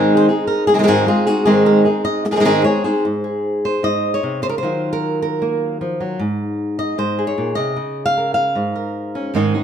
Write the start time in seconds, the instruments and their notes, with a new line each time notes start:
Already playing: nylon-string guitar G#2 D#3 G#3 C4 D#4 G#4
0.17 nylon-string guitar C5
0.29 nylon-string guitar G#3 C4 D#4 G#4
0.47 nylon-string guitar A#4
0.67 nylon-string guitar G#4, muted nylon-string guitar stroke
0.74 nylon-string guitar D#3 G#3 C4 D#4 G#4
0.78 nylon-string guitar D#3 G#3 C4 D#4 G#4
0.83 nylon-string guitar D#3 G#3 C4 D#4 G#4
0.87 nylon-string guitar G#2 D#3 G#3 C4 D#4 F#4 G#4
1.07 nylon-string guitar G#3 C4 D#4 F4 G#4
1.26 nylon-string guitar G#3 C4 D#4 F#4 G#4
1.45 nylon-string guitar G#2 D#3 G#3 C4 D#4 G#4
1.66 nylon-string guitar A#4
1.85 nylon-string guitar G#3 C4 D#4 G#4
2.05 nylon-string guitar D#5
2.25 muted nylon-string guitar stroke
2.31 nylon-string guitar D#3 G#3 C4 D#4 G#4
2.36 nylon-string guitar D#3 G#3 C4 D#4 G#4
2.40 nylon-string guitar D#3 G#3 C4 D#4 G#4
2.45 nylon-string guitar G#2 D#3 G#3 C4 D#4 G#4
2.64 nylon-string guitar G#3 C4 D#4 G#4 C#5
2.84 nylon-string guitar G#3 C4 D#4 G#4 C5
3.05 nylon-string guitar G#2
3.24 nylon-string guitar G#4
3.65 nylon-string guitar C5
3.83 nylon-string guitar G#2 D#5
4.14 nylon-string guitar C#5
4.23 nylon-string guitar C3
4.42 nylon-string guitar C#3 C5
4.49 nylon-string guitar A#4
4.58 nylon-string guitar C5
4.63 nylon-string guitar D#3 F#3 F4
4.93 nylon-string guitar A#4
5.22 nylon-string guitar A#4
5.42 nylon-string guitar A#3
5.81 nylon-string guitar F3
6.00 nylon-string guitar F#3
6.19 nylon-string guitar G#2
6.79 nylon-string guitar D#5
6.98 nylon-string guitar G#2 C5
7.19 nylon-string guitar G#4
7.27 nylon-string guitar C#5
7.38 nylon-string guitar A#2
7.55 nylon-string guitar C3 D#5
7.76 nylon-string guitar C#3
8.06 nylon-string guitar F5
8.17 nylon-string guitar A#4
8.34 nylon-string guitar F5
8.55 nylon-string guitar G#2
8.76 nylon-string guitar A#4
9.15 nylon-string guitar C#4
9.34 nylon-string guitar G#2 D#3 G#3 C4 D#4 G#4
9.54 nylon-string guitar G#3 C4 D#4 G#4